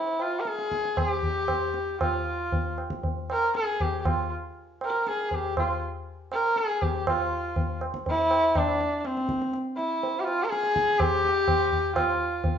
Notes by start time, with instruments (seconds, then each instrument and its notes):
Already playing: sarangi E4
0.20 sarangi F4, tabla na
0.40 sarangi A#4
0.45 sarangi G#4, tabla te
0.59 tabla te
0.72 tabla ke
0.85 tabla te
0.97 sarangi G4, tabla na, tabla ge
1.23 tabla ge
1.48 tabla na, tabla ge
1.74 tabla te
2.01 sarangi F4, tabla na, tabla ge
2.52 tabla tin, tabla ge
2.78 tabla na
2.90 tabla ke
3.03 tabla tin, tabla ge
3.30 sarangi A#4, tabla na
3.55 sarangi G#4, tabla te
3.80 sarangi G4, tabla tin, tabla ge
4.01 sarangi G4
4.05 sarangi F4, tabla na, tabla ge
4.81 sarangi A#4, tabla na
5.02 sarangi A#4
5.07 sarangi G#4, tabla te
5.28 sarangi G#4, tabla tin, tabla ge
5.34 sarangi G4
5.57 sarangi F4, tabla na, tabla ge
6.32 sarangi A#4, tabla na
6.56 sarangi G#4, tabla te
6.82 sarangi G4, tabla tin, tabla ge
7.07 sarangi F4, tabla na, tabla ge
7.56 tabla tin, tabla ge
7.81 tabla na
7.94 tabla ke
8.06 sarangi E4, tabla tin, tabla ge
8.31 tabla na
8.55 sarangi D4, tabla na, tabla ge
8.81 tabla te
9.00 sarangi D4
9.05 sarangi C4, tabla te
9.17 tabla te
9.29 tabla ke
9.42 tabla te
9.54 tabla te
9.76 sarangi E4, tabla te
10.03 tabla tin
10.20 sarangi G4
10.24 sarangi F4, tabla na
10.43 sarangi A#4
10.50 sarangi G#4, tabla te
10.63 tabla te
10.76 tabla ke
10.88 tabla te
10.99 sarangi G4, tabla na, tabla ge
11.24 tabla te
11.48 tabla na, tabla ge
11.72 tabla ge
11.95 sarangi F4, tabla na, tabla ge
12.44 tabla tin, tabla ge